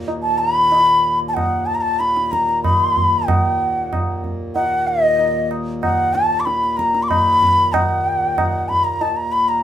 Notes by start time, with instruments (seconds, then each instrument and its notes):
Already playing: harmonium D#2 A#2
0.08 tabla tin
0.22 bansuri A5
0.39 bansuri B5
0.72 tabla tin
1.28 bansuri A5
1.34 bansuri F#5, tabla na, tabla ge
1.66 bansuri A5
1.75 bansuri A#5
1.81 bansuri A5
1.99 bansuri B5, tabla te
2.17 tabla te
2.32 bansuri A#5, tabla ke
2.49 tabla te
2.63 bansuri B5, tabla na, tabla ge
2.97 tabla ge
3.28 bansuri F#5, tabla na, tabla ge
3.93 tabla na, tabla ge
4.24 tabla ge
4.55 bansuri F#5, tabla tin
4.88 bansuri D#5
5.19 tabla tin
5.51 tabla na
5.83 bansuri F#5, tabla na, tabla ge
6.14 bansuri A5, tabla te
6.40 bansuri D6
6.46 bansuri B5, tabla te
6.64 tabla te
6.77 bansuri A#5, tabla ke
6.95 tabla te
7.03 bansuri D6
7.09 bansuri B5, tabla na, tabla ge
7.42 tabla ge
7.73 bansuri F#5, tabla na, tabla ge
8.38 tabla na, tabla ge
8.69 bansuri B5, tabla ge
8.84 bansuri A#5
9.01 bansuri A5, tabla tin
9.16 bansuri A#5
9.32 bansuri B5
9.49 bansuri A#5